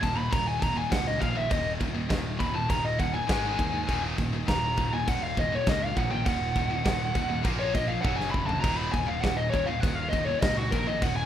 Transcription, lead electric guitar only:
0.03 0.18 A5 loud
0.18 0.32 B5 loud
0.33 0.47 A#5 medium
0.48 0.63 G#5 loud
0.63 0.77 A#5 loud
0.78 0.91 G#5 medium
0.91 1.06 F#5 medium
1.07 1.20 D#5 medium
1.20 1.35 F5 loud
1.37 1.51 E5 medium
1.51 1.69 D#5 medium
2.39 2.55 B5 loud
2.55 2.69 A5 medium
2.70 2.84 A#5 medium
2.84 2.99 D#5 medium
3.00 3.14 F#5 medium
3.14 3.99 G#5 medium
4.49 4.90 A#5 medium
4.94 5.07 G#5 loud
5.08 5.22 F#5 loud
5.23 5.37 F5 medium
5.39 5.53 D#5 loud
5.55 5.68 C#5 medium
5.69 5.85 D#5 loud
5.85 5.97 F5 medium
5.97 6.11 F#5 loud
6.11 6.25 G5 loud
6.26 7.41 F#5 medium
7.59 7.74 C#5 medium
7.75 7.90 D#5 medium
7.88 8.01 F5 medium
8.01 8.18 F#5 medium
8.16 8.30 G#5 medium
8.31 8.46 B5 loud
8.46 8.60 A5 medium
8.61 8.76 A#5 medium
8.77 8.92 B5 medium
8.92 9.08 G#5 loud
9.06 9.21 F5 medium
9.21 9.37 F#5 loud
9.37 9.50 D#5 loud
9.51 9.67 C#5 medium
9.66 9.80 F5 medium
9.80 9.95 F#5 loud
9.95 10.11 F5 loud
10.09 10.25 D#5 medium
10.25 10.41 C#5 medium
10.41 10.57 D#5 loud
10.57 10.72 F#4 medium
10.71 10.86 A#4 loud
10.87 11.02 D#5 medium
11.01 11.16 F#5 medium
11.16 11.26 G#5 loud

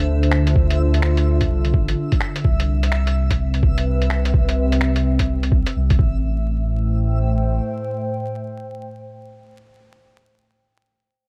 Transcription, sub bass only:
0.00 0.55 D2 medium
0.56 1.49 D2 loud
1.50 1.72 C2 medium
1.74 1.96 A1 medium
2.45 4.33 C2 loud
4.34 5.65 C2 medium
5.76 5.99 C2 medium
5.99 7.60 A1 medium

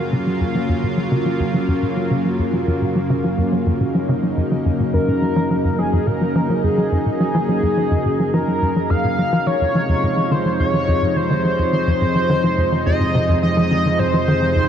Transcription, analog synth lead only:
4.94 5.80 A#4 loud
5.78 6.08 G#4 medium
6.07 6.65 A#4 loud
6.64 7.20 G#4 loud
7.20 8.35 G#4 loud
8.33 8.92 A#4 loud
8.90 9.48 F5 loud
9.47 10.33 C#5 loud
10.31 10.59 C5 loud
10.60 11.18 C#5 loud
11.16 11.72 C5 loud
11.73 12.82 C5 loud
12.86 13.39 D#5 loud
13.43 14.01 D#5 loud
13.99 14.69 C5 loud

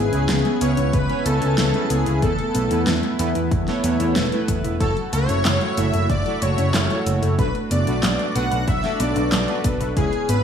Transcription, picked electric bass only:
0.13 0.26 C#2 medium
0.29 0.42 C#2 loud
0.61 0.74 C#2 loud
0.77 0.90 C#2 medium
0.93 1.06 C#2 loud
1.26 1.38 C#2 loud
1.42 1.55 C#2 medium
1.58 1.71 C#2 loud
1.90 2.03 C#2 loud
2.07 2.19 C#2 medium
2.22 2.35 E2 loud
2.55 2.68 B1 medium
2.71 2.84 E2 medium
2.87 3.00 E2 loud
3.19 3.32 E2 loud
3.35 3.48 E2 medium
3.51 3.64 E2 loud
3.84 3.97 E2 medium
4.00 4.13 E2 medium
4.16 4.29 E1 loud
4.48 4.61 E2 loud
4.64 4.77 E1 medium
4.80 4.93 F#1 loud
5.13 5.26 C#2 medium
5.29 5.42 F#1 medium
5.45 5.58 F#1 loud
5.77 5.90 F#1 loud
5.94 6.06 F#1 medium
6.10 6.22 F#1 loud
6.42 6.55 F#1 loud
6.58 6.71 F#1 medium
6.74 6.87 F#1 loud
7.06 7.19 F#1 medium
7.22 7.35 F#1 medium
7.39 7.51 B1 loud
7.71 7.84 F#1 medium
7.87 8.00 B1 medium
8.03 8.16 B1 loud
8.35 8.48 B1 loud
8.52 8.64 B1 medium
8.68 8.80 B1 loud
9.00 9.13 B1 loud
9.16 9.29 B1 medium
9.32 9.45 B1 loud
9.64 9.77 B1 loud
9.80 9.93 B1 medium
9.97 10.09 C#2 loud
10.29 10.42 G#1 loud

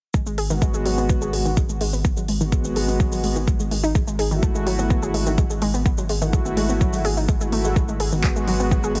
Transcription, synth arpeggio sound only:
0.14 0.20 G#3 medium
0.26 0.37 G#3 medium
0.38 0.48 G#4 medium
0.50 0.56 D#3 loud
0.62 0.71 G#3 loud
0.74 0.85 G#3 medium
0.86 0.91 F#3 loud
0.98 1.08 B3 medium
1.09 1.15 B3 medium
1.22 1.31 G#4 medium
1.33 1.43 G#3 medium
1.45 1.51 D#3 loud
1.57 1.63 G#3 medium
1.69 1.80 G#3 medium
1.81 1.93 G#3 loud
1.93 2.04 B3 medium
2.05 2.11 B3 medium
2.17 2.22 F#3 medium
2.29 2.38 G#3 medium
2.41 2.46 D#3 loud
2.52 2.58 G#3 medium
2.64 2.76 B3 medium
2.76 2.88 G#3 loud
2.88 2.99 B3 medium
3.00 3.10 F#3 loud
3.12 3.18 F#3 medium
3.24 3.33 G#3 medium
3.36 3.41 D#3 loud
3.47 3.53 G#3 medium
3.60 3.70 G#3 medium
3.71 3.77 G#3 medium
3.83 3.93 D#4 loud
3.95 4.01 G#3 medium
4.07 4.18 G#3 medium
4.19 4.29 G#4 medium
4.31 4.37 D#3 loud
4.43 4.52 A3 loud
4.55 4.66 G#3 medium
4.67 4.72 F#3 loud
4.79 4.89 B3 medium
4.90 4.96 B3 medium
5.03 5.12 G#4 medium
5.14 5.24 G#3 medium
5.26 5.32 D#3 loud
5.38 5.44 G#3 medium
5.50 5.61 G#3 medium
5.62 5.73 G#3 loud
5.74 5.84 B3 medium
5.86 5.91 B3 medium
5.98 6.03 F#3 medium
6.09 6.19 G#3 medium
6.22 6.27 D#3 loud
6.33 6.39 G#3 medium
6.45 6.56 B3 medium
6.57 6.69 G#3 loud
6.69 6.80 B3 medium
6.81 6.91 F#3 loud
6.93 6.99 F#3 medium
7.05 7.16 G#4 loud
7.17 7.26 D#4 medium
7.29 7.34 G#3 loud
7.41 7.52 G#3 medium
7.53 7.58 A3 loud
7.65 7.74 G#3 medium
7.76 7.82 G#3 medium
7.89 7.99 G#3 medium
8.00 8.10 G#4 medium
8.12 8.18 D#3 loud
8.24 8.33 G#3 loud
8.36 8.47 G#3 medium
8.48 8.53 F#3 loud
8.60 8.70 B3 medium
8.71 8.77 B3 medium
8.84 8.93 G#4 medium
8.95 9.00 G#3 medium

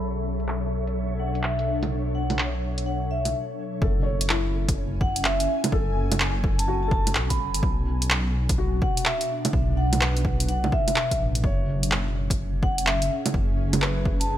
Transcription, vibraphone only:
1.20 1.42 F#5 medium
1.43 1.69 E5 medium
2.15 2.40 F#5 medium
2.86 3.09 F#5 medium
3.11 3.34 E5 medium
5.01 5.23 F#5 medium
5.25 5.50 E5 medium
6.59 6.80 A5 medium
6.83 6.88 A5 medium
6.91 7.01 A5 medium
7.30 7.69 B5 medium
8.82 9.04 F#5 medium
9.06 9.31 E5 medium
9.77 10.03 F#5 medium
10.49 10.71 F#5 medium
10.73 11.20 E5 medium
12.63 12.85 F#5 medium
12.86 13.12 E5 medium
14.20 14.38 A5 medium

